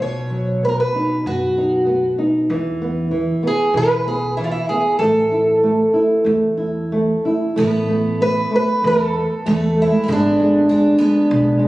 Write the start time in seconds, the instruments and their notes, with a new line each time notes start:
0.00 upright bass B1, nylon-string guitar B2, twelve-string acoustic guitar C#5
0.30 nylon-string guitar F#3
0.63 nylon-string guitar B3, twelve-string acoustic guitar B4
0.69 twelve-string acoustic guitar A#4
0.80 twelve-string acoustic guitar B4
0.95 nylon-string guitar D#4
1.26 upright bass F#2, nylon-string guitar B3, twelve-string acoustic guitar F#4
1.58 nylon-string guitar D#4
1.87 nylon-string guitar B3
2.18 nylon-string guitar D#4
2.50 upright bass E2, nylon-string guitar E3
2.82 nylon-string guitar B3
3.11 nylon-string guitar E3
3.43 nylon-string guitar B3
3.47 twelve-string acoustic guitar G#4
3.74 upright bass B1, nylon-string guitar E3, twelve-string acoustic guitar B4
4.07 nylon-string guitar B3, twelve-string acoustic guitar G#4
4.37 nylon-string guitar E3, twelve-string acoustic guitar E4
4.44 twelve-string acoustic guitar F4
4.51 twelve-string acoustic guitar E4
4.69 nylon-string guitar B3, twelve-string acoustic guitar G#4
4.99 upright bass A1, nylon-string guitar A3, twelve-string acoustic guitar A4
5.32 nylon-string guitar E4
5.63 nylon-string guitar A3
5.94 nylon-string guitar E4
6.24 upright bass E2, nylon-string guitar A3
6.57 nylon-string guitar E4
6.92 nylon-string guitar A3
7.25 nylon-string guitar E4
7.56 upright bass A1, nylon-string guitar A3, twelve-string acoustic guitar B3
7.88 nylon-string guitar A3
8.21 nylon-string guitar A3, twelve-string acoustic guitar B4
8.51 nylon-string guitar A3
8.56 twelve-string acoustic guitar B4
8.82 upright bass E2, nylon-string guitar A3
8.87 twelve-string acoustic guitar A4
9.14 nylon-string guitar A3
9.46 upright bass E2, nylon-string guitar A3, twelve-string acoustic guitar A3
9.77 nylon-string guitar A3
9.82 twelve-string acoustic guitar E4
9.87 twelve-string acoustic guitar G#3
10.04 twelve-string acoustic guitar A#3
10.08 upright bass G#1, nylon-string guitar G#3, twelve-string acoustic guitar B3
10.12 twelve-string acoustic guitar D4
10.40 nylon-string guitar G#3
10.69 nylon-string guitar G#3, twelve-string acoustic guitar D4
10.98 nylon-string guitar G#3, twelve-string acoustic guitar B3
11.30 upright bass B1, nylon-string guitar G#3
11.59 nylon-string guitar G#3